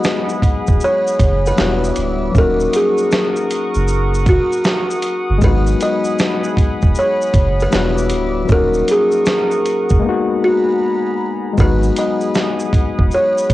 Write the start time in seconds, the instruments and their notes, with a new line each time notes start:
Already playing: reed electric piano F#3 G#3 B3 D#4 F#4, ambient pad G#4 F#5 B5 D#6, kalimba D#5
0.04 snare, shaker
0.29 shaker
0.42 kick, closed hi-hat, shaker
0.67 sub bass E1, kick, shaker
0.80 kalimba C#5, shaker
1.07 shaker
1.19 sub bass F#1, kick, closed hi-hat, shaker
1.46 kalimba B4, shaker
1.56 sub bass E1, reed electric piano G3 B3 D4 E4, ambient pad G3 E5 D6, snare, shaker
1.61 reed electric piano F#4, kalimba B4
1.84 shaker
1.96 sub bass D1, closed hi-hat, shaker
2.32 sub bass D#1, reed electric piano F#3 A#3, ambient pad A#4 F#5 C#6 D#6, kick, shaker
2.36 reed electric piano C#4 D#4, kalimba A#4
2.41 reed electric piano F#4
2.60 shaker
2.73 kalimba G#4, closed hi-hat, shaker
2.98 shaker
3.12 snare, shaker
3.36 shaker
3.51 closed hi-hat, shaker
3.75 sub bass F#1, shaker
3.88 shaker
4.15 shaker
4.26 kalimba F#4, kick, closed hi-hat, shaker
4.53 shaker
4.65 snare, shaker
4.91 shaker
5.02 closed hi-hat, shaker
5.30 sub bass G1
5.38 reed electric piano F#3 G#3 B3, ambient pad G#4 B5, kick, shaker
5.42 sub bass G#1, reed electric piano D#4, kalimba B4
5.47 reed electric piano F#4
5.67 shaker
5.81 kalimba D#5, closed hi-hat, shaker
6.04 shaker
6.19 snare, shaker
6.44 shaker
6.57 kick, closed hi-hat, shaker
6.82 sub bass E1, kick, shaker
6.95 kalimba C#5, shaker
7.22 shaker
7.34 sub bass F#1, kick, closed hi-hat, shaker
7.60 kalimba B4, shaker
7.71 sub bass E1, reed electric piano G3 B3 D4 E4, ambient pad G3 E5 D6, snare, shaker
7.75 reed electric piano F#4, kalimba B4
7.98 shaker
8.10 sub bass D1, closed hi-hat, shaker
8.45 reed electric piano F#3 A#3, shaker
8.49 sub bass D#1, reed electric piano C#4 D#4, ambient pad A#4 F#5 C#6 D#6, kalimba A#4, kick
8.55 reed electric piano F#4
8.74 shaker
8.88 kalimba G#4, closed hi-hat, shaker
9.12 shaker
9.26 snare, shaker
9.51 shaker
9.66 closed hi-hat, shaker
9.89 sub bass F#1, kick, shaker
10.00 reed electric piano G#3 A#3, ambient pad G#4 A#5 B5
10.04 reed electric piano B3 D#4
10.09 reed electric piano F#4
10.44 kalimba F#4
11.53 reed electric piano F#3 G#3
11.58 sub bass G#1, reed electric piano B3 D#4, ambient pad G#4 F#5 B5 D#6, kalimba B4, kick, shaker
11.62 reed electric piano F#4
11.83 shaker
11.96 kalimba D#5, closed hi-hat, shaker
12.21 shaker
12.35 snare, shaker
12.60 shaker
12.73 kick, closed hi-hat, shaker
12.99 sub bass E1, kick
13.11 kalimba C#5, shaker
13.38 shaker
13.50 sub bass F#1, kick, closed hi-hat, shaker